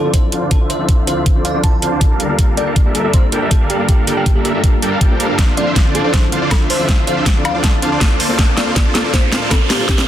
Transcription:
Already playing: D2 D3 C4 F4 A4
0.03 D3 F3 C4 D4 E4 F4 A4 C5 D5
0.14 D3 D4 C5, kick, closed hi-hat
0.31 D3 F3 C4 D4 E4 F4 A4 C5 F5, closed hi-hat
0.42 D3 D4 F4 C5 D5
0.50 F3 C4 D4 E4 A4, kick, closed hi-hat
0.61 D3 D4 F4 C5 E5
0.70 C5, closed hi-hat
0.78 D3 F3 C4 D4 E4 F4 A4 C5 E5
0.89 D3 D4 F4 C5 E5, kick, closed hi-hat
1.06 D3 F3 C4 D4 E4 F4 A4 C5 F5, closed hi-hat
1.17 D3 D4 F4 C5 E5
1.26 kick, closed hi-hat
1.35 D3 F3 C4 D4 E4 F4 A4 C5 D5
1.45 F5, closed hi-hat
1.53 D3 F3 C4 D4 E4 F4 A4 C5 D5
1.64 D4 C5 A5, kick, closed hi-hat
1.81 D3 F3 C4 D4 E4 F4 A4 C5 F5, closed hi-hat
1.92 D3 D4 F4 C5 D5
2.00 F3 C4 D4 E4 A4, kick, closed hi-hat
2.11 G3 D4 A4 A#4 F5
2.20 G2 A#3 F4, closed hi-hat
2.28 G3 A#3 D4 F4 A4 A#4 F5
2.39 kick, closed hi-hat
2.57 G3 A#3 D4 F4 A4 A#4 D5 G5, closed hi-hat
2.67 G3 D4 A4 A#4 F5
2.76 kick, closed hi-hat
2.85 G3 A#3 D4 F4 A4 A#4 E5
2.95 A4, closed hi-hat
3.04 G3 A#3 D4 F4 A4 A#4 E5
3.14 G3 D4 C5, kick, closed hi-hat
3.31 G3 A#3 D4 F4 A4 A#4 G5, closed hi-hat
3.42 G3 D4 A4 A#4 E5
3.50 G3 A#3 D4 F4 A4, kick, closed hi-hat
3.61 G3 D4 A4 A#4 F5
3.70 G4, closed hi-hat
3.79 G3 A#3 D4 F4 A4 A#4 F5
3.89 G3 D4 G4 A4 A#4 F5, kick, closed hi-hat
4.06 G3 A#3 D4 F4 A4 A#4 G5, closed hi-hat
4.17 G3 D4 G4 A4 A#4 F5
4.26 kick, closed hi-hat
4.35 G3 A#3 D4 F4 G4 A4 A#4 E5
4.45 G4, closed hi-hat
4.53 G3 A#3 D4 F4 A4 A#4 E5
4.64 kick, closed hi-hat
4.82 G3 D4 A4 A#4 G5, closed hi-hat
4.92 G3 D4 A4 A#4 F5
5.00 G3 A#3 D4 F4 G4, kick, closed hi-hat
5.10 G3 A#3 D4 F4 C5
5.20 G3 D4 A4 A#4 F5, closed hi-hat
5.28 G3 A#3 D4 F4 A4 A#4 F5
5.39 D2 C4, kick, snare, closed hi-hat, riser
5.56 D3 F3 C4 D4 E4 F4 A4 C5 D5 F5, closed hi-hat
5.67 D3 D4 F4 C5 E5
5.76 kick, snare, closed hi-hat
5.85 D3 F3 C4 D4 E4 F4 A4 C5 D5
5.95 A4, closed hi-hat
6.04 D3 F3 C4 D4 E4 F4 A4 C5 D5
6.14 C5 E5, kick, snare, closed hi-hat
6.31 D3 F3 C4 D4 E4 F4 A4 C5 F5, closed hi-hat
6.42 D3 D4 F4 C5 D5
6.50 F3 D4 A4, kick, snare, closed hi-hat, high woodblock
6.61 D3 D4 F4 C5 E5
6.70 C5, open hi-hat
6.79 D3 F3 C4 D4 E4 F4 A4 C5 E5
6.89 kick, snare, closed hi-hat
7.07 D3 F3 C4 D4 E4 F4 A4 C5 F5, closed hi-hat
7.17 D3 D4 F4 C5 E5
7.26 kick, snare, closed hi-hat
7.35 D3 F3 C4 D4 E4 F4 A4 C5 D5
7.45 F5, closed hi-hat, high woodblock
7.54 D3 F3 C4 D4 E4 F4 A4 C5 D5
7.64 D3 D4 F4 C5 A5, kick, snare, closed hi-hat
7.81 D3 F3 C4 D4 E4 F4 A4 C5 F5, closed hi-hat
7.92 D3 D4 F4 C5 D5
8.01 A4, kick, snare, closed hi-hat
8.11 A#3 F4 A4 C5 D5
8.20 A#2 F3 A3 D4, open hi-hat
8.28 A#3 C4 D4 F4 A4 C5 D5
8.39 A#3 A4, kick, snare, closed hi-hat
8.56 A#3 C4 D4 F4 A4 C5 D5 F5, snare, closed hi-hat
8.67 A#3 F4 A4 C5 D5
8.76 kick, snare, closed hi-hat
8.85 A#3 C4 D4 F4 A4 C5 D5
8.95 A4, snare, closed hi-hat
9.03 A#3 C4 D4 F4 A4 C5 D5
9.14 A#3 F4 A4 C5 D5, kick, snare, closed hi-hat
9.31 A#3 C4 D4 F4 A4 C5 F5, snare, closed hi-hat
9.42 A#3 F4 A4 C5 D5
9.50 A#3 C4 D4 A4, kick, snare, closed hi-hat, high woodblock
9.61 A#3 F4 A4 C5 D5
9.70 G4, snare, open hi-hat
9.78 A#3 C4 D4 F4 A4 C5 D5
9.88 A#3 G4, kick, snare, closed hi-hat
9.98 snare

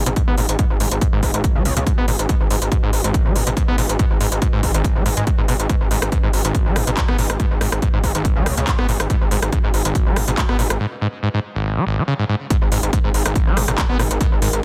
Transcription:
Already playing: C#4 F#4 B4 D#5
0.06 G#1 B2, closed hi-hat
0.16 G#2, kick, closed hi-hat
0.28 G#1 B3
0.38 G#1 A#2, open hi-hat
0.49 G#1, closed hi-hat
0.59 G#2, kick, closed hi-hat
0.70 G#1
0.80 G#1 G#2, open hi-hat
0.91 G#1, closed hi-hat
1.01 G#2, kick, closed hi-hat
1.13 G#1 G#2
1.23 G#1, kick, open hi-hat
1.34 G#1, closed hi-hat
1.44 kick, closed hi-hat
1.55 C#2 G#3
1.65 C#2 G#2, open hi-hat
1.77 C#2 B2, closed hi-hat
1.87 G#2, kick, closed hi-hat
1.98 G#1 B3
2.08 G#1 A#2, open hi-hat
2.19 G#1, closed hi-hat
2.29 G#2, kick, closed hi-hat
2.40 G#1
2.50 G#1 G#2, open hi-hat
2.62 G#1, closed hi-hat
2.72 G#2, kick, closed hi-hat
2.83 G#1 G#2
2.93 G#1, open hi-hat
3.04 G#1, closed hi-hat
3.14 kick, closed hi-hat
3.25 G#1 G#3
3.36 G#1 G#2, open hi-hat
3.47 G#1 B2, closed hi-hat
3.57 G#2, kick, closed hi-hat
3.68 G#1 B3
3.78 G#1 A#2, open hi-hat
3.89 G#1, closed hi-hat
3.99 G#2, kick, closed hi-hat
4.11 G#1
4.21 G#1 G#2, open hi-hat
4.32 G#1, closed hi-hat
4.42 G#2, kick, closed hi-hat
4.53 G#1 G#2
4.63 G#1, kick, open hi-hat
4.74 G#1, closed hi-hat
4.84 kick, closed hi-hat
4.96 G#1 G#3
5.06 G#1 G#2, open hi-hat
5.17 G#1 G#2, closed hi-hat
5.27 G#2, kick, closed hi-hat
5.38 G#1 G#2
5.48 G#1 B2, open hi-hat
5.60 G#1, closed hi-hat
5.69 G#2, kick, closed hi-hat
5.81 G#1
5.91 G#1 G#2, open hi-hat
6.02 G#1, cross-stick, closed hi-hat
6.12 G#2, kick, closed hi-hat
6.23 G#1 G#2
6.33 G#1, open hi-hat
6.45 G#1, closed hi-hat
6.55 kick, closed hi-hat
6.66 G#1 G#3
6.76 G#1 G#2, cross-stick, open hi-hat
6.87 G#1 B2, closed hi-hat
6.97 G#2, kick, clap, closed hi-hat
7.08 G#1 B3, cross-stick
7.18 G#1 A#2, open hi-hat
7.30 G#1, cross-stick, closed hi-hat
7.40 G#2, kick, closed hi-hat
7.51 G#1
7.61 G#1 G#2, cross-stick, open hi-hat
7.72 G#1, cross-stick, closed hi-hat
7.82 G#2, kick, closed hi-hat
7.94 G#1 G#2
8.04 G#1, kick, open hi-hat
8.15 G#1, closed hi-hat
8.25 kick, closed hi-hat
8.36 C#2 G#3
8.46 C#2 G#2, cross-stick, open hi-hat
8.57 C#2 B2, closed hi-hat
8.67 G#2, kick, clap, closed hi-hat
8.79 G#1 B3, cross-stick
8.89 G#1 A#2, open hi-hat
9.00 G#1, cross-stick, closed hi-hat
9.10 G#2, kick, closed hi-hat
9.21 G#1
9.31 G#1 G#2, open hi-hat
9.42 G#1, cross-stick, closed hi-hat
9.52 G#2, kick, closed hi-hat
9.64 G#1 G#2
9.74 G#1, open hi-hat
9.85 G#1, closed hi-hat
9.95 kick, closed hi-hat
10.06 G#1 G#3
10.16 G#1 G#2, cross-stick, open hi-hat
10.28 G#1 B2, closed hi-hat
10.38 G#2, kick, clap, closed hi-hat
10.49 G#1 B3, cross-stick
10.59 G#1 A#2, open hi-hat
10.70 G#1, cross-stick, closed hi-hat
10.80 G#2
11.01 G#2
11.23 G#2
11.34 G#2
11.55 G#1
11.77 G#3
11.87 G#1
11.98 G#3
12.08 C#3
12.19 G#2
12.29 G#2
12.50 G#2 D#3, kick, closed hi-hat, sub drop
12.62 G#1
12.72 G#1 G#2, open hi-hat
12.83 G#1, closed hi-hat
12.93 G#2, kick, closed hi-hat
13.04 G#1 G#2
13.14 G#1, open hi-hat
13.26 G#1, cross-stick, closed hi-hat
13.36 kick, closed hi-hat
13.47 G#1 G#3
13.57 G#1 G#2, cross-stick, open hi-hat
13.68 G#1 B2, cross-stick, closed hi-hat
13.78 G#2, kick, clap, closed hi-hat
13.89 G#1 B3
13.99 G#1 A#2, cross-stick, open hi-hat
14.11 G#1, closed hi-hat
14.21 G#2, kick, closed hi-hat
14.32 G#1
14.42 G#1 G#2, open hi-hat
14.53 G#1, closed hi-hat

